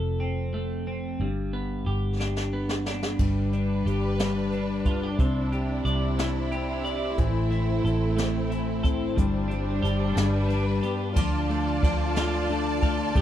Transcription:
Already playing: F1 F2 A3 A4
0.20 C4
0.54 A3
0.87 C4
1.20 G1 G2
1.53 B3
1.87 G1 G4
2.20 D4, snare
2.36 snare
2.53 B3
2.69 snare
2.86 D4, snare
3.03 snare
3.18 G1 G2 G3 D4 B4, kick, crash
3.53 D4, closed hi-hat
3.86 G1 G4, closed hi-hat
4.19 G3, snare, closed hi-hat
4.52 D4, closed hi-hat
4.85 F4, kick, closed hi-hat
5.04 G4
5.18 C2 C4 E4, kick, closed hi-hat
5.52 G4, closed hi-hat
5.85 C2 D5, closed hi-hat
6.18 E4, snare, closed hi-hat
6.52 G4, closed hi-hat
6.85 D5, closed hi-hat
7.17 A1 A2 E3 A3 E4, kick, closed hi-hat
7.51 E3 E4, closed hi-hat
7.84 A1 E4 A4, closed hi-hat
8.17 A3 C4, snare, closed hi-hat
8.50 E3 E4, closed hi-hat
8.83 C4 A4, kick, closed hi-hat
9.16 G1 G2 G3 D4, kick, closed hi-hat
9.48 G3 D4, closed hi-hat
9.82 G1 D4 G4, closed hi-hat
10.15 G1 G2 G3 B4, snare, closed hi-hat
10.48 G3 D4, closed hi-hat
10.83 B3 G4, closed hi-hat
11.14 D2 D3 F3 F4 D5 A5, kick, crash
11.50 A3, ride
11.83 D2 F3 D4, kick, ride
12.16 A3 F4, snare, ride
12.49 A3 D4, ride
12.82 A3 F4, kick, ride
13.15 G1 G3 A3 G4, kick, ride

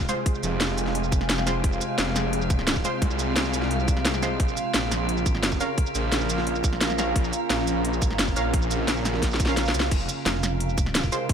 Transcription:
Already playing: C3 G#3 C4 F4 G#4 F5
0.00 kick, shaker
0.09 G#3 F4 C5, closed hi-hat, shaker
0.26 kick, closed hi-hat
0.35 shaker
0.43 F1, closed hi-hat, shaker
0.60 snare, closed hi-hat
0.69 shaker
0.78 closed hi-hat, shaker
0.86 snare
0.95 closed hi-hat
1.04 shaker
1.12 kick, closed hi-hat, shaker
1.21 snare
1.30 snare, closed hi-hat
1.38 snare, shaker
1.47 G#3 F4 C5, snare, closed hi-hat, shaker
1.64 F1, kick, closed hi-hat
1.73 shaker
1.81 closed hi-hat, shaker
1.98 F1, snare, closed hi-hat
2.16 snare, closed hi-hat, shaker
2.33 closed hi-hat
2.42 shaker
2.50 kick, closed hi-hat, shaker
2.59 snare
2.67 snare, closed hi-hat
2.76 kick, shaker
2.85 G#3 F4 C5, closed hi-hat, shaker
3.02 C2, kick, closed hi-hat
3.11 shaker
3.19 closed hi-hat, shaker
3.36 snare, closed hi-hat
3.45 shaker
3.54 closed hi-hat, shaker
3.62 snare
3.71 closed hi-hat
3.79 shaker
3.88 kick, closed hi-hat, shaker
3.97 snare
4.05 snare, closed hi-hat
4.14 snare, shaker
4.23 G#3 F4 C5, snare, closed hi-hat, shaker
4.40 A#1 C#3 A#3 C#4, kick, closed hi-hat
4.48 shaker
4.55 A#4, closed hi-hat, shaker
4.74 A#1, snare, closed hi-hat
4.92 snare, closed hi-hat, shaker
5.09 closed hi-hat
5.17 shaker
5.26 kick, closed hi-hat, shaker
5.35 snare
5.43 snare, closed hi-hat
5.52 kick, shaker
5.60 C#4 A#4 F5, closed hi-hat, shaker
5.78 kick, closed hi-hat
5.86 shaker
5.95 A#1, closed hi-hat, shaker
6.12 snare, closed hi-hat
6.21 shaker
6.29 closed hi-hat, shaker
6.38 snare
6.47 closed hi-hat
6.55 shaker
6.64 kick, closed hi-hat, shaker
6.73 snare
6.81 snare, closed hi-hat
6.90 snare, shaker
6.98 C#4 A#4 F5, snare, closed hi-hat, shaker
7.16 A#1, kick, closed hi-hat
7.24 shaker
7.33 closed hi-hat, shaker
7.50 A#1, snare, closed hi-hat
7.67 closed hi-hat, shaker
7.85 closed hi-hat
7.93 shaker
8.02 kick, closed hi-hat, shaker
8.10 snare
8.19 snare, closed hi-hat
8.28 kick, shaker
8.36 A#1 C#4 A#4 F5, closed hi-hat, shaker
8.54 kick, closed hi-hat
8.62 shaker
8.71 closed hi-hat, shaker
8.88 A#1, snare, closed hi-hat
8.97 shaker
9.05 snare, closed hi-hat, shaker
9.14 snare
9.23 kick, snare, closed hi-hat, swell
9.31 snare, shaker
9.40 kick, closed hi-hat, shaker
9.46 C#4 A#4 F5, snare
9.57 snare, closed hi-hat
9.66 snare, shaker
9.74 C2, closed hi-hat, shaker
9.80 snare
9.91 F1 C3 G#3 C4 F4, kick, closed hi-hat, crash
10.00 shaker
10.09 closed hi-hat, shaker
10.14 G#4
10.26 F1, snare, closed hi-hat
10.43 snare, closed hi-hat, shaker
10.60 closed hi-hat
10.69 shaker
10.78 kick, closed hi-hat, shaker
10.86 snare
10.95 snare, closed hi-hat
11.04 kick, shaker
11.12 G#3 F4 C5, closed hi-hat, shaker
11.29 kick, closed hi-hat

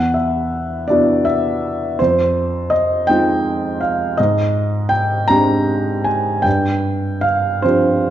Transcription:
Already playing: E2 F#5
0.14 E5
0.88 B3 D4 E4 F#4 D5
1.25 E5
1.99 F2 C5
2.70 D#5
3.07 G#3 C4 D#4 F4 G5
3.81 F5
4.17 G#2 D#5
4.89 G5
5.28 G#3 C4 D4 G4 A#5
6.04 G#5
6.42 G2 G5
7.21 F5
7.62 F3 C4 D4 G4 C5

